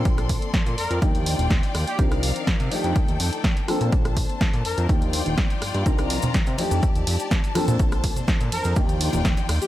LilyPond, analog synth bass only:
\new Staff \with { instrumentName = "Analog synth bass" } { \clef bass \time 4/4 \key bes \major \tempo 4 = 124 bes,,8. r8 bes,16 f,16 f,16 ees,8. ees,,16 ees,,16 r16 ees,16 r16 | c,8. r8 c16 r16 f,16 ees,16 ees,16 f,16 r4 bes,16 | bes,,8. r8 bes,16 f,16 f,16 ees,8. ees,,16 r8 g,16 g,16 | c,8. r8 c16 r16 f,16 ees,16 ees,16 f,16 r4 bes,16 |
bes,,8. r8 bes,16 f,16 f,16 ees,8. ees,,16 ees,,16 r16 ees,16 r16 | }